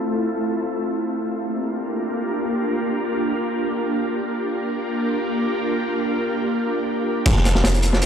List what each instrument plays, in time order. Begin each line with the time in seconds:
Already playing: ambient pad A3 C4 E4 F4 A4
1.22 ambient pad A#3 D4 F4 G4 A#4
4.25 ambient pad A#3 D4 F4 G4 A#4
7.26 808-style bass F1, ambient pad A3 C4 E4 F4 A4, kick, closed hi-hat, crash
7.36 snare
7.45 snare, closed hi-hat
7.55 snare
7.64 snare, closed hi-hat
7.74 closed hi-hat
7.82 closed hi-hat
7.93 snare
8.02 808-style bass A1, closed hi-hat